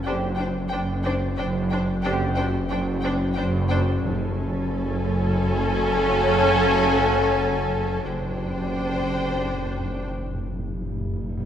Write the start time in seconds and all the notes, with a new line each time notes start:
0.04 F#1 F#2 D3 C4 D4 G4 C5 G5
0.36 D4 C5 G5
0.69 F#1 F#2 D4 C5 G5
1.03 D4 C5 G5
1.37 F#1 F#2 D4 C5 G5
1.70 D4 C5 G5
2.02 F#1 F#2 D3 C4 D4 G4 C5 G5
2.35 D4 C5 G5
2.69 F#1 F#2 D4 C5 G5
3.02 D4 C5 G5
3.34 F#1 F#2 D4 C5 G5
3.69 D4 C5 G5
4.02 F#1 F#2 C#3 F#3 A3 C#4 A4 G#5
8.04 F#1 F#2 D3 C4 D4 G4 C5 G5
8.13 F#2
8.20 F#2
8.28 F#2
8.36 F#2
8.43 F#2
8.51 F#2
8.59 F#2
8.66 F#2
8.74 F#2
8.81 F#2
8.88 F#2
8.96 F#2
9.04 F#2
9.11 F#2
9.19 F#2
9.27 F#2
9.35 F#2
9.43 F#2
9.51 F#2
9.58 F#2
9.66 F#2
9.73 F#2
9.80 F#2
9.88 F#2
9.96 F#2
10.04 F#2
10.11 F#2
10.19 F#2
10.27 F#2
10.35 F#2
10.43 F#2
10.51 F#2
10.59 F#2
10.66 F#2
10.74 F#2
10.82 F#2
10.89 F#2
10.98 F#2
11.06 F#2
11.14 F#2
11.22 F#2
11.30 F#2
11.38 F#2